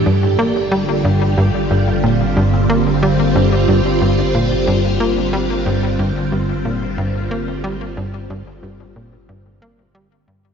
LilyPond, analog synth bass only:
\new Staff \with { instrumentName = "Analog synth bass" } { \clef bass \time 4/4 \key g \dorian \tempo 4 = 91 g,8 bes8 g8 g,8 g,8 g,8 bes,8 g,8 | bes8 g8 g,8 g,8 g,8 bes,8 g,8 bes8 | g8 g,8 g,8 g,8 bes,8 g,8 bes8 g8 | g,8 g,8 g,8 bes,8 g,8 bes8 g8 g,8 | }